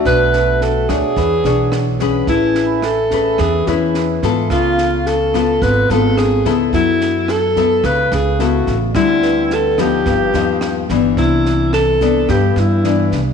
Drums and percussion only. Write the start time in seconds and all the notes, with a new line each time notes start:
0.05 kick, cross-stick, snare
0.33 snare
0.61 snare
0.89 kick, cross-stick, snare
1.17 kick, snare
1.45 snare
1.72 cross-stick, snare
2.00 kick, snare
2.27 kick, snare
2.55 snare
2.82 cross-stick, snare
3.11 kick, snare
3.38 kick, cross-stick, snare
3.67 snare
3.94 snare
4.22 kick, snare
4.50 kick, cross-stick, snare
4.78 snare
5.06 snare
5.34 kick, cross-stick, snare
5.62 kick, snare
5.90 snare
6.17 cross-stick, snare
6.45 kick, snare
6.73 kick, snare
7.01 snare
7.28 cross-stick, snare
7.56 kick, snare
7.84 kick, cross-stick, snare
8.12 snare
8.39 snare
8.67 kick, snare
8.95 kick, cross-stick, snare
9.23 snare
9.50 snare
9.78 kick, cross-stick, snare
10.06 kick, snare
10.34 snare
10.61 cross-stick, snare
10.89 kick, snare
11.17 kick, snare
11.46 snare
11.73 cross-stick, snare
12.01 kick, snare
12.29 kick, cross-stick, snare
12.57 snare
12.84 snare
13.12 kick, snare